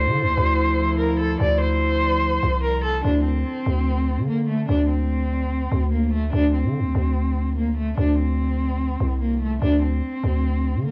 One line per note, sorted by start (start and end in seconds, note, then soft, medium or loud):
0.00 3.00 D3 medium
0.00 3.01 F3 medium
0.00 3.01 E4 medium
0.00 0.95 C5 medium
0.07 0.23 D3 loud
0.22 0.37 D2 loud
0.37 1.36 D2 loud
0.99 1.15 A#4 medium
1.20 1.36 A4 medium
1.40 2.39 D2 loud
1.40 1.57 D5 loud
1.61 2.59 C5 medium
2.43 3.02 C2 loud
2.63 2.80 A#4 medium
2.84 3.00 A4 medium
3.04 3.44 D2 loud
3.04 3.21 D4 loud
3.25 4.24 C4 medium
3.66 4.19 D2 loud
4.17 4.66 D3 medium
4.28 4.44 A#3 medium
4.48 4.65 A3 medium
4.69 5.68 D2 loud
4.69 4.85 D4 loud
4.89 5.88 C4 medium
5.72 6.31 D2 loud
5.92 6.08 A#3 medium
6.13 6.29 A3 medium
6.33 6.66 D2 loud
6.33 6.50 D4 loud
6.54 7.53 C4 medium
6.64 6.81 D3 loud
6.79 6.94 D2 loud
6.95 7.94 D2 loud
7.56 7.73 A#3 medium
7.77 7.93 A3 medium
7.98 8.96 D2 loud
7.98 8.14 D4 medium
8.18 9.17 C4 medium
9.00 9.60 C2 loud
9.21 9.37 A#3 medium
9.41 9.58 A3 medium
9.62 10.01 D2 loud
9.62 9.79 D4 loud
9.82 10.81 C4 medium
10.24 10.76 D2 loud
10.75 10.91 D3 medium
10.85 10.91 A#3 medium